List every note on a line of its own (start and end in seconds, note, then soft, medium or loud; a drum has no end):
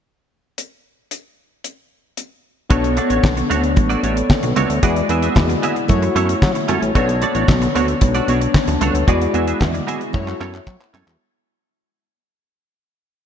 0.58 closed hi-hat medium
1.11 closed hi-hat medium
1.64 closed hi-hat medium
2.17 closed hi-hat medium
2.70 3.00 B1 loud
2.70 2.86 A3 medium
2.70 4.78 B3 medium
2.70 4.79 D4 medium
2.70 2.83 D4 medium
2.70 2.83 F#4 medium
2.70 4.79 A4 medium
2.70 4.79 C#5 medium
2.70 2.82 C#5 medium
2.70 kick loud
2.70 closed hi-hat loud
2.84 muted clean electric guitar stroke soft
2.84 closed hi-hat soft
2.84 muted conga soft
2.97 3.09 A3 medium
2.97 3.09 D4 medium
2.97 3.10 F#4 medium
2.97 3.10 D5 medium
2.97 closed hi-hat medium
2.97 high conga medium
3.10 3.20 A1 medium
3.10 3.22 A3 soft
3.10 3.23 D4 soft
3.10 3.23 F#4 soft
3.10 3.23 C#5 medium
3.10 closed hi-hat medium
3.23 3.43 B1 loud
3.23 muted clean electric guitar stroke soft
3.23 kick medium
3.23 snare loud
3.23 clap medium
3.23 muted conga soft
3.23 high conga medium
3.37 muted clean electric guitar stroke soft
3.37 closed hi-hat medium
3.37 muted conga soft
3.50 3.79 D2 medium
3.50 3.66 A3 medium
3.50 3.63 D4 medium
3.50 3.62 F#4 medium
3.50 3.62 C#5 medium
3.50 closed hi-hat medium
3.50 high conga medium
3.63 muted clean electric guitar stroke soft
3.63 closed hi-hat soft
3.76 3.96 A1 medium
3.76 muted clean electric guitar stroke soft
3.76 kick loud
3.76 closed hi-hat medium
3.76 low conga medium
3.90 4.02 A3 medium
3.90 4.02 D4 medium
3.90 4.03 F#4 medium
3.90 4.04 D5 medium
3.90 closed hi-hat soft
3.90 muted conga soft
4.03 4.23 A1 medium
4.03 4.15 A3 medium
4.03 4.16 D4 medium
4.03 4.16 F#4 medium
4.03 4.15 C#5 medium
4.03 closed hi-hat medium
4.03 high conga medium
4.17 muted clean electric guitar stroke soft
4.17 closed hi-hat medium
4.30 kick loud
4.30 snare loud
4.30 clap medium
4.30 muted conga soft
4.43 4.53 B1 medium
4.43 muted clean electric guitar stroke soft
4.43 closed hi-hat medium
4.43 muted conga soft
4.56 4.66 C#2 medium
4.56 4.72 A3 medium
4.56 4.69 D4 medium
4.56 4.69 F#4 medium
4.56 4.68 C#5 medium
4.56 closed hi-hat medium
4.56 high conga medium
4.56 low conga medium
4.70 4.79 D2 medium
4.70 muted clean electric guitar stroke soft
4.70 closed hi-hat medium
4.82 5.02 E2 loud
4.82 5.87 G#3 medium
4.82 4.98 B3 medium
4.82 5.87 E4 medium
4.82 4.96 F#4 medium
4.82 5.87 F#4 medium
4.82 4.95 G#4 medium
4.82 5.87 D5 medium
4.82 4.95 D5 medium
4.82 kick loud
4.82 closed hi-hat medium
4.82 muted conga soft
4.96 muted clean electric guitar stroke soft
4.96 closed hi-hat soft
4.96 muted conga soft
5.09 5.29 E2 loud
5.09 5.22 B3 medium
5.09 5.22 F#4 medium
5.09 5.22 G#4 medium
5.09 5.22 E5 medium
5.09 closed hi-hat medium
5.09 high conga medium
5.22 5.35 B3 soft
5.22 5.35 F#4 medium
5.22 5.35 G#4 medium
5.22 5.35 E5 medium
5.22 closed hi-hat medium
5.35 5.55 E2 medium
5.35 muted clean electric guitar stroke soft
5.35 kick loud
5.35 snare loud
5.35 clap medium
5.35 muted conga soft
5.35 high conga soft
5.49 muted clean electric guitar stroke soft
5.49 closed hi-hat medium
5.62 5.78 B3 medium
5.62 5.75 F#4 medium
5.62 5.75 G#4 medium
5.62 5.75 E5 loud
5.62 closed hi-hat medium
5.62 high conga medium
5.76 muted clean electric guitar stroke soft
5.76 closed hi-hat soft
5.88 6.09 F#2 medium
5.88 6.93 A3 medium
5.88 6.93 E4 medium
5.88 6.93 F#4 medium
5.88 6.93 C#5 medium
5.88 kick medium
5.88 closed hi-hat medium
5.88 muted conga soft
5.88 low conga medium
6.02 muted clean electric guitar stroke soft
6.02 closed hi-hat soft
6.02 muted conga soft
6.15 6.35 F#2 medium
6.15 6.31 C#4 medium
6.15 6.29 E4 medium
6.15 6.28 A4 medium
6.15 6.28 C#5 medium
6.15 closed hi-hat medium
6.15 high conga medium
6.29 muted clean electric guitar stroke soft
6.29 closed hi-hat medium
6.42 6.52 F#3 loud
6.42 kick loud
6.42 snare medium
6.42 clap medium
6.55 muted clean electric guitar stroke soft
6.55 closed hi-hat soft
6.55 muted conga soft
6.68 6.79 F#2 loud
6.68 6.84 C#4 medium
6.68 6.81 E4 medium
6.68 6.81 A4 medium
6.68 6.81 C#5 loud
6.68 closed hi-hat medium
6.68 high conga medium
6.68 low conga medium
6.82 6.92 A1 medium
6.82 muted clean electric guitar stroke soft
6.82 closed hi-hat medium
6.95 7.24 B1 loud
6.95 7.11 A3 medium
6.95 9.03 B3 medium
6.95 9.04 D4 medium
6.95 7.08 D4 medium
6.95 7.08 F#4 loud
6.95 9.04 A4 medium
6.95 7.07 C#5 medium
6.95 9.04 C#5 medium
6.95 kick loud
6.95 closed hi-hat medium
6.95 muted conga soft
7.09 muted clean electric guitar stroke soft
7.09 closed hi-hat medium
7.09 muted conga soft
7.22 7.34 A3 medium
7.22 7.34 D4 medium
7.22 7.34 F#4 medium
7.22 7.34 D5 medium
7.22 closed hi-hat medium
7.22 high conga medium
7.35 7.45 A1 medium
7.35 7.47 A3 medium
7.35 7.48 D4 medium
7.35 7.47 F#4 medium
7.35 7.47 C#5 medium
7.35 closed hi-hat medium
7.48 7.68 B1 loud
7.48 muted clean electric guitar stroke soft
7.48 kick loud
7.48 snare loud
7.48 clap medium
7.48 muted conga soft
7.48 high conga soft
7.62 muted clean electric guitar stroke soft
7.62 closed hi-hat medium
7.75 7.94 D2 medium
7.75 7.90 A3 medium
7.75 7.88 D4 medium
7.75 7.87 F#4 medium
7.75 7.87 C#5 medium
7.75 closed hi-hat medium
7.75 high conga medium
7.88 muted clean electric guitar stroke medium
7.88 closed hi-hat soft
8.01 8.21 B1 medium
8.01 muted clean electric guitar stroke soft
8.01 kick loud
8.01 closed hi-hat medium
8.01 muted conga soft
8.01 low conga medium
8.14 8.27 A3 medium
8.14 8.27 D4 medium
8.14 8.28 F#4 medium
8.14 8.29 D5 medium
8.14 closed hi-hat soft
8.14 muted conga soft
8.28 8.47 B1 medium
8.28 8.40 A3 medium
8.28 8.40 D4 medium
8.28 8.41 F#4 medium
8.28 8.40 C#5 medium
8.28 closed hi-hat medium
8.28 high conga medium
8.41 muted clean electric guitar stroke soft
8.41 closed hi-hat medium
8.54 kick loud
8.54 snare loud
8.54 clap medium
8.68 8.77 D2 medium
8.68 muted clean electric guitar stroke soft
8.68 closed hi-hat medium
8.81 8.91 C#2 medium
8.81 8.97 A3 medium
8.81 8.94 D4 medium
8.81 8.94 F#4 medium
8.81 8.93 C#5 loud
8.81 closed hi-hat medium
8.81 high conga medium
8.81 low conga medium
8.94 9.04 D2 medium
8.94 muted clean electric guitar stroke soft
8.94 closed hi-hat soft
9.07 9.27 E2 loud
9.07 10.11 G#3 medium
9.07 9.23 B3 medium
9.07 10.11 E4 medium
9.07 10.12 F#4 medium
9.07 9.21 F#4 medium
9.07 9.20 G#4 medium
9.07 10.12 D5 medium
9.07 9.20 D5 medium
9.07 kick loud
9.07 closed hi-hat medium
9.21 muted clean electric guitar stroke soft
9.21 closed hi-hat medium
9.21 muted conga soft
9.34 9.53 E2 medium
9.34 9.46 B3 medium
9.34 9.46 F#4 medium
9.34 9.47 G#4 medium
9.34 9.46 E5 medium
9.34 closed hi-hat medium
9.34 high conga medium
9.47 9.60 B3 medium
9.47 9.60 F#4 medium
9.47 9.60 G#4 medium
9.47 9.60 E5 medium
9.47 closed hi-hat medium
9.60 9.80 E2 medium
9.60 muted clean electric guitar stroke soft
9.60 kick medium
9.60 snare loud
9.60 clap medium
9.60 muted conga soft
9.60 high conga soft
9.73 muted clean electric guitar stroke soft
9.73 closed hi-hat medium
9.73 muted conga soft
9.87 10.03 B3 medium
9.87 10.00 F#4 medium
9.87 10.00 G#4 medium
9.87 10.00 E5 medium
9.87 closed hi-hat medium
9.87 high conga medium
10.01 muted clean electric guitar stroke medium
10.01 closed hi-hat soft
10.13 10.34 F#2 medium
10.13 11.17 A3 medium
10.13 11.18 E4 medium
10.13 11.18 F#4 medium
10.13 11.18 C#5 medium
10.13 kick loud
10.13 clap soft
10.13 muted conga soft
10.13 low conga medium
10.27 muted clean electric guitar stroke soft
10.27 clap soft
10.40 10.60 F#2 medium
10.40 10.56 C#4 medium
10.40 10.53 E4 medium
10.40 10.53 A4 medium
10.40 10.53 C#5 medium
10.40 clap medium
10.40 high conga medium
10.54 muted clean electric guitar stroke medium
10.54 clap medium
10.67 10.77 F#3 loud
10.67 kick loud
10.67 clap medium
10.67 muted conga soft
10.80 muted clean electric guitar stroke soft
10.80 clap medium
10.80 muted conga soft
10.93 11.03 F#2 medium
10.93 11.09 C#4 medium
10.93 11.06 E4 medium
10.93 11.06 A4 medium
10.93 11.05 C#5 medium
10.93 clap medium
10.93 high conga medium
10.93 low conga medium
11.07 11.17 E2 medium
11.07 muted clean electric guitar stroke soft
11.07 clap medium